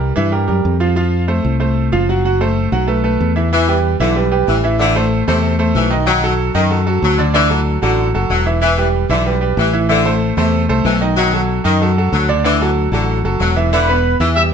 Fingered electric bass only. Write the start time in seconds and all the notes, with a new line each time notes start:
Already playing: C2
0.17 G2
0.49 F#2
0.65 F2
1.45 C2
1.92 F#1
2.72 B1
3.20 E2
4.00 B1
4.48 A1
5.28 E2
5.75 B1
6.55 F#2
7.02 D2
7.82 A1
8.14 F#1
8.30 E1
9.09 B1
9.57 A1
10.37 E2
10.69 C2
10.85 B1
11.65 F#2
12.12 D2
12.92 A1
13.24 F#1
13.40 E1
14.20 E2